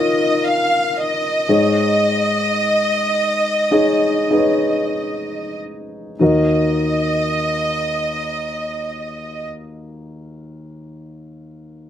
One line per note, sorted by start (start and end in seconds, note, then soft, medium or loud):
0.00 1.49 D#4 medium
0.00 1.51 F4 soft
0.00 1.51 A#4 soft
0.00 1.50 C#5 medium
0.00 0.45 D#5 medium
0.00 1.41 D#5 medium
0.45 0.97 F5 medium
0.97 5.56 D#5 medium
1.49 3.10 G#2 soft
1.49 3.60 D#4 soft
1.49 3.60 G#4 soft
1.49 3.60 C#5 soft
1.49 3.61 D#5 medium
3.71 4.28 D#4 medium
3.71 4.28 G#4 soft
3.71 4.28 C#5 soft
3.71 4.28 D#5 medium
4.31 6.11 D#4 medium
4.31 6.11 G#4 soft
4.31 4.39 B4 soft
4.31 6.11 D#5 medium
4.38 6.15 C#5 soft
6.19 9.42 D#2 soft
6.19 9.41 D#4 soft
6.19 9.42 F#4 soft
6.19 9.43 A#4 soft
6.19 9.44 D#5 medium
6.19 9.45 D#5 medium